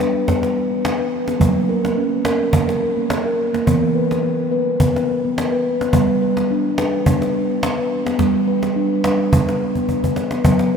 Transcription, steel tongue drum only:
0.00 1.37 G3 medium
0.00 0.28 B4 medium
0.27 0.43 B3 medium
0.44 0.71 B4 medium
0.72 1.00 B3 medium
0.99 1.27 B4 medium
1.28 1.41 B3 medium
1.39 3.62 F#3 medium
1.39 1.68 A#3 medium
1.69 1.97 A#4 medium
1.97 2.26 C#4 medium
2.25 2.54 A#4 medium
2.53 2.69 A#3 medium
2.68 2.97 A#4 medium
2.97 3.25 A#3 medium
3.26 3.54 A#4 medium
3.53 3.67 A#3 medium
3.67 5.89 E3 medium
3.67 3.95 B3 medium
3.95 4.24 B4 medium
4.23 4.51 B3 medium
4.52 4.80 B4 medium
4.81 4.96 B3 medium
4.96 5.24 B4 medium
5.25 5.52 B3 medium
5.52 5.80 B4 medium
5.81 5.92 B3 medium
5.93 8.15 G3 medium
5.93 6.22 B3 medium
6.22 6.50 B4 medium
6.51 6.78 D4 medium
6.78 7.06 B4 medium
7.06 7.21 B3 medium
7.21 7.50 B4 medium
7.50 7.78 B3 medium
7.78 8.06 B4 medium
8.06 8.17 B3 medium
8.18 10.41 G3 medium
8.18 8.47 B3 medium
8.48 8.76 B4 medium
8.76 9.04 D4 medium
9.04 9.32 B4 medium
9.33 9.47 B3 medium
9.48 9.76 B4 medium
9.76 10.04 B3 medium
10.04 10.32 B4 medium
10.33 10.45 B3 medium
10.44 10.77 F#3 medium
10.44 10.73 B3 medium

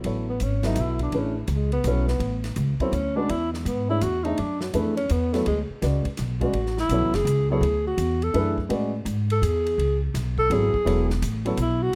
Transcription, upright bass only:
0.05 0.40 A1 medium
0.41 0.76 G#1 medium
0.77 1.12 B1 medium
1.13 1.47 A1 medium
1.48 1.84 C#2 medium
1.84 2.19 B1 medium
2.20 2.55 A1 medium
2.56 2.79 C#2 medium
2.80 muted upright bass stroke soft
2.92 3.28 D2 medium
3.29 3.64 E2 medium
3.65 4.00 G#2 medium
4.02 4.37 E2 medium
4.39 4.73 F#2 medium
4.74 5.09 F2 medium
5.10 5.45 E2 medium
5.46 5.68 D2 medium
5.70 muted upright bass stroke soft
5.82 6.04 C#2 medium
6.06 muted upright bass stroke soft
6.19 6.52 B1 medium
6.53 6.88 A1 medium
6.89 7.02 B1 medium
7.02 7.13 A1 medium
7.13 7.24 F#1 medium
7.25 7.60 C#2 loud
7.61 7.96 D2 medium
7.97 8.33 E2 medium
8.34 8.69 F#2 medium
8.70 9.05 A2 medium
9.05 9.41 G#2 medium
9.42 9.77 E2 medium
9.78 10.13 C#2 medium
10.14 10.49 B1 medium
10.50 10.72 G#1 medium
10.74 muted upright bass stroke soft
10.86 11.21 E1 medium
11.22 11.57 A1 medium
11.57 11.93 B1 medium

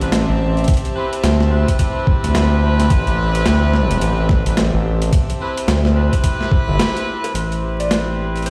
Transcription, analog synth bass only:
0.02 0.27 A1 loud
0.29 0.66 A1 loud
1.24 1.66 D2 loud
2.24 2.89 D2 loud
2.90 3.05 A1 medium
3.07 3.44 A1 loud
3.46 4.00 D2 loud
4.01 4.43 A1 loud
4.46 4.71 A1 loud
4.74 5.11 A1 loud
5.68 6.10 D2 loud
6.68 6.79 G1 loud
7.34 8.50 A1 medium

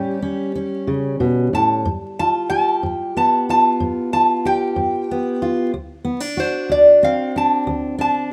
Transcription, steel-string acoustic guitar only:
0.00 0.48 A2 medium
0.00 3.14 G3 medium
0.00 0.21 C#4 medium
0.00 1.85 G4 medium
0.22 0.54 C#4 medium
0.56 1.81 C#4 medium
0.87 1.20 C#3 medium
1.20 1.53 B2 medium
1.53 1.85 A2 medium
1.85 2.44 G2 medium
2.20 3.48 F4 medium
2.50 4.44 G4 medium
2.83 3.41 G2 medium
3.17 5.10 B3 medium
3.49 4.12 F4 medium
3.80 4.38 G2 medium
4.13 5.41 F4 medium
4.45 5.71 G4 medium
4.76 5.35 G2 medium
5.11 5.71 B3 medium
5.42 5.70 F4 medium
5.74 6.32 D2 medium
6.05 6.20 B3 medium
6.20 7.35 D4 soft
6.37 8.30 F#4 medium
6.69 7.28 D2 medium
7.03 8.33 C4 medium
7.36 7.97 D4 medium
7.67 8.26 D2 medium
7.99 8.33 D4 medium

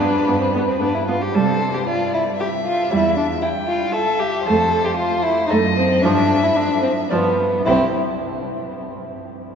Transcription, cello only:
0.00 0.20 G2 soft
0.26 0.74 G2 soft
0.81 1.28 G2 soft
1.35 1.79 C3 soft
2.91 3.34 E2 soft
4.46 4.89 F2 medium
5.50 5.94 F#2 medium
6.03 6.47 G2 medium
7.10 7.56 G2 soft
7.64 7.95 C2 soft

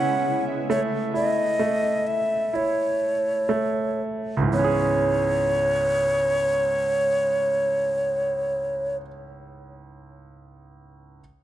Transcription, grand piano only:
0.00 0.71 C#4 medium
0.00 0.66 G#4 medium
0.70 1.58 A3 medium
1.14 2.52 E4 medium
1.59 3.46 A3 medium
2.53 4.48 E4 medium
3.49 4.48 A3 medium
4.37 8.80 C#2 medium
4.42 8.85 G#2 medium
4.47 8.91 E3 soft
4.53 8.96 B3 soft
4.59 9.02 C#4 medium
4.64 9.08 G#4 medium

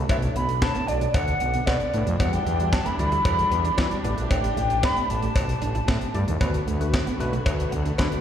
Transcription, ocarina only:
0.10 0.16 E5 loud
0.36 0.63 B5 medium
0.62 0.89 A5 loud
0.88 1.16 D5 medium
1.14 1.68 F#5 medium
1.66 2.19 D5 medium
2.19 2.34 F#5 medium
2.33 2.74 G5 loud
2.72 2.87 A5 loud
2.86 2.98 B5 medium
2.99 4.00 B5 medium
4.31 4.85 G5 loud
4.84 5.12 B5 loud
5.10 6.15 A5 loud

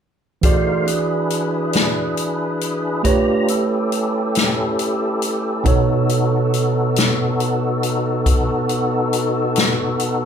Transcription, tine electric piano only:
0.41 3.00 E3 soft
0.41 3.01 F#4 soft
0.41 3.01 G#4 soft
0.41 3.02 D5 medium
3.03 5.61 A3 medium
3.03 5.62 G4 soft
3.03 5.62 B4 soft
3.03 5.62 C#5 medium
5.64 10.25 B2 medium
5.64 10.25 D#4 soft
5.64 10.25 A4 soft
5.64 10.25 C#5 medium

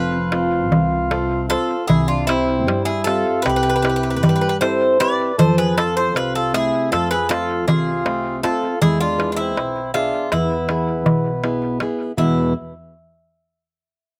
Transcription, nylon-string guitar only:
0.00 0.70 F3 medium
0.00 0.17 C4 medium
0.00 0.17 F4 medium
0.00 0.17 A4 soft
0.33 0.96 C4 medium
0.33 0.96 F4 soft
0.33 0.96 A4 soft
0.72 1.48 C3 medium
1.11 1.74 C4 medium
1.11 1.49 F4 soft
1.11 1.50 A4 medium
1.50 1.82 F4 medium
1.50 1.82 A4 soft
1.50 1.83 C5 medium
1.90 2.66 C3 medium
2.28 2.91 C4 soft
2.28 2.91 E4 soft
2.28 2.92 G4 medium
2.67 3.43 G3 medium
3.06 3.69 C4 soft
3.06 3.69 G4 medium
3.06 3.69 E5 soft
3.45 4.21 C3 medium
3.83 4.46 C4 soft
3.83 4.46 E4 soft
3.83 4.46 G4 medium
4.23 4.98 G3 medium
4.61 4.99 C4 medium
4.61 4.99 E4 soft
4.61 5.00 G4 medium
5.00 5.31 C4 medium
5.00 5.31 E4 medium
5.00 5.32 G4 medium
5.38 6.13 F3 medium
5.76 6.38 C4 soft
5.76 6.38 F4 soft
5.76 6.39 A4 medium
6.15 6.89 C3 medium
6.53 7.15 A3 medium
6.53 7.15 C4 medium
6.92 7.66 F3 medium
7.29 7.91 A3 medium
7.29 7.91 C4 soft
7.29 7.91 F4 soft
7.68 8.42 C3 medium
8.05 8.67 A3 medium
8.05 8.42 C4 medium
8.05 8.43 F4 soft
8.43 8.74 C4 medium
8.43 8.75 F4 medium
8.43 8.75 A4 medium
8.82 9.55 G#3 medium
9.18 9.80 E4 soft
9.18 9.80 G#4 medium
9.18 9.79 B4 medium
9.94 10.55 B3 soft
9.94 10.55 G#4 medium
9.94 10.55 E5 soft
10.33 11.05 E3 medium
10.69 11.29 B3 medium
10.69 11.30 E4 soft
10.69 11.30 G#4 medium
11.07 11.79 B2 medium
11.44 11.81 B3 medium
11.44 11.81 E4 medium
11.44 11.81 G#4 medium
11.81 12.11 B3 medium
11.81 12.11 E4 soft
11.81 12.12 G#4 medium
12.17 12.52 E2 medium
12.17 12.53 B2 medium
12.17 12.53 E3 medium
12.17 12.53 G#3 medium
12.17 12.54 B3 medium

